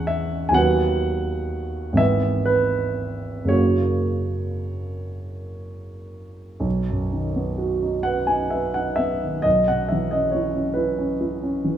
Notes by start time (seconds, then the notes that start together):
Already playing: E2 E3 C#4 G#4 F#5
0.07 E5
0.49 D#2 F#3 G#5
0.54 B3 B4 F#5
1.93 G#1 E3 B3
1.97 B4 E5
2.46 B4
3.45 F#1 C#3 A#3 C#5
3.49 F#4
6.60 B1
6.90 F#2
7.13 D#3
7.36 B3
7.58 F#4
7.83 D#4
8.03 B4 F#5
8.27 D#4 G#5
8.50 B4 E5
8.74 D#4 F#5
8.96 B3 E5
9.22 D#3
9.42 B1 D#5
9.68 B2 F#5
9.89 E3 E5
10.11 C#4 D#5
10.31 E4 C#5
10.55 C#4
10.74 E4 B4
10.98 C#4
11.21 E4
11.43 C#4
11.64 E3